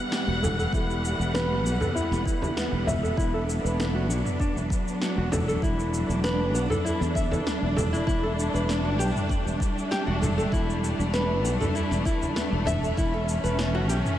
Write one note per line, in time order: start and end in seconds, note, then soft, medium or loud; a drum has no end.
0.00 3.14 E3 medium
0.00 3.14 G3 medium
0.00 8.04 B3 medium
0.00 14.19 B3 medium
0.00 14.19 B4 medium
0.00 3.14 F#5 medium
0.12 0.27 G4 medium
0.12 snare loud
0.12 shaker soft
0.27 0.66 E1 medium
0.27 0.42 F#4 medium
0.43 0.58 A4 medium
0.43 mid tom medium
0.43 frame drum medium
0.43 shaker medium
0.59 0.72 A4 medium
0.59 shaker soft
0.72 1.12 E1 medium
0.72 1.33 E4 medium
0.72 kick loud
0.72 shaker soft
0.90 shaker soft
1.05 shaker medium
1.19 1.64 E1 loud
1.19 shaker soft
1.34 1.63 B4 medium
1.34 snare loud
1.34 shaker soft
1.64 1.76 B1 medium
1.64 1.74 B3 medium
1.64 shaker medium
1.81 1.95 A4 medium
1.81 mid tom medium
1.81 frame drum medium
1.81 shaker soft
1.95 2.24 E4 medium
1.95 shaker soft
2.11 2.22 E1 medium
2.11 snare soft
2.11 shaker soft
2.26 2.55 E4 medium
2.26 kick loud
2.26 shaker medium
2.42 frame drum medium
2.42 shaker soft
2.57 2.72 B3 medium
2.57 snare loud
2.57 shaker soft
2.72 3.11 E1 medium
2.87 3.02 E5 loud
2.87 mid tom medium
2.87 frame drum medium
2.87 shaker medium
3.03 3.17 A4 medium
3.03 shaker soft
3.17 3.57 E1 medium
3.17 8.03 F#3 medium
3.17 12.93 D4 medium
3.17 3.33 E4 medium
3.17 kick loud
3.17 shaker soft
3.34 3.42 A4 medium
3.50 shaker medium
3.64 4.09 E1 loud
3.64 3.78 B4 medium
3.64 shaker soft
3.80 snare loud
3.80 shaker soft
3.95 4.08 F#4 medium
4.09 4.21 B1 medium
4.09 4.19 F#4 medium
4.09 shaker medium
4.25 mid tom medium
4.25 shaker soft
4.40 4.55 D4 loud
4.40 kick loud
4.40 shaker soft
4.56 4.66 E1 medium
4.56 shaker soft
4.70 kick loud
4.70 shaker medium
4.88 shaker soft
5.01 5.16 F#4 medium
5.01 snare medium
5.01 shaker soft
5.17 5.56 E1 medium
5.17 5.31 F#4 medium
5.32 5.47 A4 medium
5.32 mid tom medium
5.32 frame drum loud
5.32 shaker medium
5.48 5.62 A4 medium
5.48 shaker soft
5.62 6.01 E1 medium
5.62 6.23 E4 medium
5.62 kick loud
5.62 shaker soft
5.80 shaker soft
5.94 shaker medium
6.09 6.54 E1 loud
6.09 shaker soft
6.24 6.53 B4 medium
6.24 snare loud
6.24 shaker soft
6.54 6.66 B1 medium
6.54 6.64 B3 medium
6.54 shaker medium
6.70 6.84 A4 medium
6.70 mid tom medium
6.70 frame drum medium
6.70 shaker soft
6.85 6.99 E4 medium
6.85 shaker soft
7.01 7.39 E2 medium
7.01 snare soft
7.01 shaker soft
7.15 7.25 E5 medium
7.15 kick loud
7.15 shaker medium
7.32 7.46 A4 medium
7.32 frame drum medium
7.32 shaker soft
7.46 7.62 D4 medium
7.46 snare medium
7.46 shaker soft
7.62 8.01 E1 medium
7.76 7.92 A4 medium
7.76 mid tom medium
7.76 frame drum medium
7.76 shaker medium
7.93 8.06 E4 medium
7.93 shaker soft
8.06 8.46 E1 medium
8.06 12.93 G3 medium
8.06 14.19 A3 medium
8.06 8.22 E4 loud
8.06 kick loud
8.06 shaker soft
8.23 8.32 A4 medium
8.40 shaker medium
8.54 8.99 E1 medium
8.54 8.68 B4 medium
8.54 shaker soft
8.69 snare medium
8.69 shaker soft
8.85 8.99 F#4 medium
8.99 9.10 B1 medium
8.99 9.08 G4 medium
8.99 shaker medium
9.16 mid tom medium
9.16 shaker soft
9.29 9.45 D4 medium
9.29 kick loud
9.29 shaker soft
9.46 9.56 E1 medium
9.46 shaker soft
9.60 kick medium
9.60 shaker medium
9.78 shaker soft
9.91 10.06 G4 loud
9.91 snare medium
9.91 shaker soft
10.07 10.46 E1 medium
10.07 10.21 F#4 medium
10.22 10.37 A4 medium
10.22 mid tom medium
10.22 frame drum medium
10.22 shaker medium
10.38 10.52 A4 medium
10.38 shaker soft
10.52 10.91 E1 medium
10.52 11.12 E4 medium
10.52 kick loud
10.52 shaker soft
10.70 shaker soft
10.84 shaker medium
10.99 11.44 E1 loud
10.99 shaker soft
11.14 11.43 B4 medium
11.14 snare medium
11.14 shaker soft
11.44 11.56 B1 medium
11.44 11.54 B3 medium
11.44 shaker medium
11.60 11.74 A4 medium
11.60 mid tom medium
11.60 frame drum medium
11.60 shaker soft
11.75 12.04 E4 medium
11.75 shaker soft
11.91 12.01 E1 medium
11.91 snare soft
11.91 shaker soft
12.05 12.35 E4 medium
12.05 kick loud
12.05 shaker medium
12.22 frame drum medium
12.22 shaker soft
12.36 12.51 B3 medium
12.36 snare medium
12.36 shaker soft
12.52 12.90 E1 medium
12.65 12.82 E5 loud
12.65 mid tom medium
12.65 frame drum medium
12.65 shaker medium
12.83 12.97 A4 medium
12.83 shaker soft
12.97 13.36 E1 medium
12.97 14.19 E3 medium
12.97 14.19 C#4 medium
12.97 13.13 E4 medium
12.97 kick loud
12.97 shaker soft
13.14 13.22 A4 medium
13.29 shaker medium
13.44 13.89 E1 loud
13.44 13.58 B4 medium
13.44 shaker soft
13.59 snare loud
13.59 shaker soft
13.75 13.89 F#4 medium
13.89 14.01 B1 medium
13.89 13.98 G4 loud
13.89 shaker medium
14.05 mid tom medium
14.05 shaker soft